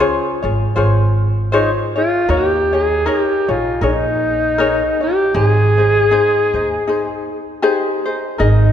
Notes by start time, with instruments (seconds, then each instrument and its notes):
Already playing: alto saxophone C#4
0.00 ukulele F4 G#4 C5 C#5
0.43 upright bass G#1, ukulele F4 G#4 C#5
0.76 upright bass G#1, ukulele F4 G#4 C5 C#5
1.52 alto saxophone D#4, ukulele F4 G#4 C5 C#5
1.96 alto saxophone F4, ukulele F4 G#4 C#5
2.29 upright bass D#2, ukulele D#4 A#4 C#5, alto saxophone G4
2.73 ukulele D#4 G#4 C#5, alto saxophone G#4
3.06 ukulele D#4 A#4 C#5, alto saxophone G#4
3.18 alto saxophone G4
3.48 upright bass A#1, ukulele D#4 G#4 C#5, alto saxophone F4
3.81 upright bass A#1, ukulele D#4 G#4 A#4 C#5, alto saxophone D#4
4.58 ukulele D#4 G#4 A#4 C#5
5.01 ukulele D#4 C#5, alto saxophone G4
5.34 upright bass G#1, ukulele D#4 G#4 C5, alto saxophone G#4
5.78 ukulele D#4 G#4 C5
6.11 ukulele D#4 G#4 C5
6.54 upright bass D#2, ukulele D#4 G#4 C5
6.87 ukulele D#4 G#4 C5
7.62 ukulele D#4 G4 G#4 C5
8.06 ukulele D#4 G#4 C5
8.38 upright bass G#1, ukulele D#4 G#4 A#4 D#5, alto saxophone D#4